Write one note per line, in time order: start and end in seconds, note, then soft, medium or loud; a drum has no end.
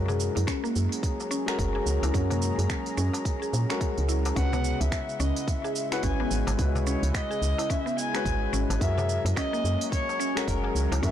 0.00 0.30 F#2 medium
0.00 4.37 F#3 medium
0.00 1.42 G#3 medium
0.00 1.43 C#4 medium
0.00 0.86 E4 medium
0.00 1.44 F#4 medium
0.00 1.44 A#4 medium
0.08 0.35 G#4 medium
0.08 darbuka tek medium
0.08 darbuka dum medium
0.08 shaker soft
0.20 6.06 C#4 medium
0.20 shaker medium
0.35 0.45 F#2 loud
0.35 0.47 E4 medium
0.35 open hi-hat soft
0.35 darbuka tek soft
0.35 shaker soft
0.47 0.63 C#4 loud
0.47 finger snap medium
0.47 kick loud
0.47 open hi-hat medium
0.47 shaker soft
0.64 1.18 A#3 loud
0.64 shaker soft
0.76 0.88 F#2 medium
0.76 5.45 A#5 medium
0.76 shaker medium
0.80 5.77 G#4 medium
0.92 open hi-hat soft
0.92 shaker soft
1.03 kick loud
1.03 open hi-hat medium
1.03 shaker soft
1.20 darbuka ka medium
1.20 shaker soft
1.31 1.47 C#4 loud
1.31 shaker medium
1.46 1.58 G#3 loud
1.46 1.59 C#4 medium
1.46 1.59 F#4 medium
1.46 1.59 A#4 loud
1.46 finger snap medium
1.46 open hi-hat soft
1.46 shaker soft
1.59 1.81 F#1 medium
1.59 kick loud
1.59 open hi-hat medium
1.59 shaker soft
1.75 2.01 G#4 medium
1.75 darbuka ka medium
1.86 1.99 C#2 medium
1.86 shaker medium
2.03 2.11 C#2 medium
2.03 2.14 E4 medium
2.03 open hi-hat soft
2.03 darbuka tek medium
2.03 shaker soft
2.12 2.52 F#2 loud
2.12 3.65 G#3 medium
2.12 3.65 C#4 medium
2.12 2.30 C#4 loud
2.12 3.66 F#4 medium
2.12 kick loud
2.12 open hi-hat medium
2.12 shaker soft
2.16 3.67 A#4 medium
2.30 2.85 A#3 loud
2.30 open hi-hat soft
2.30 darbuka tek medium
2.30 darbuka dum medium
2.30 shaker soft
2.42 shaker medium
2.58 2.67 F#2 loud
2.58 open hi-hat soft
2.58 darbuka tek soft
2.58 shaker soft
2.70 finger snap medium
2.70 kick loud
2.70 open hi-hat soft
2.70 shaker soft
2.86 open hi-hat soft
2.86 shaker soft
2.97 3.10 F#2 medium
2.97 3.13 C#4 loud
2.97 shaker medium
3.13 open hi-hat soft
3.13 darbuka ka soft
3.13 darbuka tek medium
3.13 shaker soft
3.25 kick loud
3.25 open hi-hat medium
3.25 shaker soft
3.42 3.52 G#4 medium
3.42 shaker soft
3.53 3.66 A#2 medium
3.53 shaker medium
3.69 3.81 G#3 loud
3.69 3.81 C#4 medium
3.69 3.80 C#4 medium
3.69 3.82 F#4 medium
3.69 3.82 A#4 loud
3.69 finger snap medium
3.69 open hi-hat soft
3.69 darbuka ka soft
3.69 shaker soft
3.81 3.97 G#3 medium
3.81 kick loud
3.81 open hi-hat medium
3.81 shaker soft
3.98 4.32 C#2 medium
3.98 open hi-hat soft
4.09 4.24 E4 medium
4.09 darbuka ka soft
4.09 shaker medium
4.25 open hi-hat soft
4.25 darbuka tek medium
4.25 shaker soft
4.35 4.74 C#2 loud
4.35 8.81 C#3 medium
4.35 5.87 G#3 medium
4.35 5.88 C#4 medium
4.35 4.52 C#4 loud
4.35 5.88 F#4 medium
4.35 5.89 B4 loud
4.35 4.82 F#5 loud
4.35 kick loud
4.35 open hi-hat medium
4.35 shaker soft
4.53 5.07 B3 loud
4.53 darbuka tek medium
4.53 darbuka dum medium
4.53 shaker soft
4.61 10.61 E4 medium
4.61 shaker medium
4.80 4.89 C#2 loud
4.80 5.21 E5 medium
4.80 open hi-hat soft
4.80 darbuka tek soft
4.80 shaker soft
4.92 finger snap medium
4.92 kick loud
4.92 open hi-hat medium
4.92 shaker soft
5.07 8.81 G#3 medium
5.07 shaker soft
5.20 5.32 C#2 medium
5.20 5.36 C#4 loud
5.20 5.49 D#5 medium
5.20 shaker medium
5.36 open hi-hat soft
5.36 shaker soft
5.47 5.93 E5 loud
5.47 kick loud
5.47 open hi-hat medium
5.47 shaker soft
5.64 5.90 G#4 medium
5.64 darbuka ka medium
5.64 shaker soft
5.76 shaker medium
5.91 6.03 G#3 medium
5.91 6.03 C#4 medium
5.91 6.03 E4 medium
5.91 6.04 F#4 medium
5.91 6.04 B4 loud
5.91 6.04 F#5 medium
5.91 finger snap medium
5.91 open hi-hat soft
5.91 shaker soft
6.03 6.25 G#1 medium
6.03 6.19 C#4 loud
6.03 6.47 G#5 loud
6.03 kick loud
6.03 open hi-hat medium
6.03 shaker soft
6.20 6.74 B3 loud
6.20 darbuka ka medium
6.31 6.43 G#1 medium
6.31 shaker medium
6.47 6.56 G#1 medium
6.47 open hi-hat soft
6.47 darbuka tek medium
6.47 shaker soft
6.57 6.96 C#2 loud
6.57 8.09 G#3 medium
6.57 8.10 C#4 medium
6.57 8.11 F#4 medium
6.57 kick loud
6.57 open hi-hat medium
6.57 shaker soft
6.61 8.11 B4 medium
6.75 darbuka tek medium
6.75 darbuka dum medium
6.75 shaker soft
6.86 7.02 C#4 loud
6.86 7.12 C#5 medium
6.86 shaker medium
7.03 7.11 C#2 loud
7.03 open hi-hat soft
7.03 shaker soft
7.14 7.71 D#5 loud
7.14 finger snap medium
7.14 kick loud
7.14 open hi-hat medium
7.14 shaker soft
7.31 7.57 G#4 medium
7.31 shaker soft
7.42 7.54 C#2 medium
7.42 shaker medium
7.58 7.69 E4 medium
7.58 open hi-hat soft
7.58 darbuka ka soft
7.58 darbuka tek medium
7.58 shaker soft
7.70 7.85 C#4 loud
7.70 7.99 E5 loud
7.70 kick loud
7.70 open hi-hat medium
7.70 shaker soft
7.86 8.40 B3 loud
7.86 shaker soft
7.98 8.53 G#5 loud
7.98 shaker medium
8.14 8.25 G#3 loud
8.14 8.26 C#4 medium
8.14 8.26 F#4 medium
8.14 8.27 B4 loud
8.14 finger snap medium
8.14 open hi-hat soft
8.14 darbuka ka soft
8.14 shaker soft
8.25 8.47 G#1 medium
8.25 kick loud
8.25 open hi-hat medium
8.25 shaker soft
8.53 8.66 G#1 medium
8.53 8.69 C#4 loud
8.53 darbuka ka soft
8.53 shaker medium
8.70 8.78 G#1 medium
8.70 open hi-hat soft
8.70 darbuka tek medium
8.70 shaker soft
8.79 9.19 F#2 loud
8.79 11.11 F#3 medium
8.79 10.32 G#3 medium
8.79 10.32 C#4 medium
8.79 10.33 F#4 medium
8.79 10.34 A#4 medium
8.79 9.33 E5 loud
8.79 kick loud
8.79 open hi-hat medium
8.79 shaker soft
8.98 9.24 G#4 medium
8.98 darbuka tek medium
8.98 darbuka dum medium
8.98 shaker soft
9.09 11.11 C#4 medium
9.09 shaker medium
9.25 9.33 F#2 loud
9.25 9.36 E4 medium
9.25 open hi-hat soft
9.25 darbuka tek soft
9.25 shaker soft
9.36 9.52 C#4 loud
9.36 9.88 D#5 loud
9.36 finger snap medium
9.36 kick medium
9.36 open hi-hat medium
9.36 shaker soft
9.53 10.07 A#3 loud
9.53 shaker soft
9.64 9.77 F#2 medium
9.64 shaker medium
9.81 11.11 G#4 medium
9.81 open hi-hat soft
9.81 shaker soft
9.92 10.44 C#5 loud
9.92 kick loud
9.92 open hi-hat medium
9.92 shaker soft
10.09 darbuka ka medium
10.09 shaker soft
10.20 10.35 C#4 loud
10.20 11.11 A#4 medium
10.20 shaker medium
10.35 10.47 G#3 loud
10.35 10.48 C#4 medium
10.35 10.48 F#4 medium
10.35 10.48 A#4 loud
10.35 finger snap medium
10.35 open hi-hat soft
10.35 shaker soft
10.47 10.70 F#1 medium
10.47 10.89 A#4 medium
10.47 kick loud
10.47 open hi-hat medium
10.47 shaker soft
10.64 10.90 G#4 medium
10.64 darbuka ka medium
10.75 10.88 C#2 medium
10.75 shaker medium
10.92 11.00 C#2 medium
10.92 11.02 E4 medium
10.92 open hi-hat soft
10.92 darbuka tek medium
10.92 shaker soft
11.01 11.11 F#2 loud
11.01 11.11 G#3 medium
11.01 11.11 C#4 medium
11.01 11.11 C#4 loud
11.01 11.11 F#4 medium
11.01 11.11 A#4 loud
11.01 11.11 E5 loud
11.01 kick loud
11.01 open hi-hat medium
11.01 darbuka ka soft
11.01 shaker soft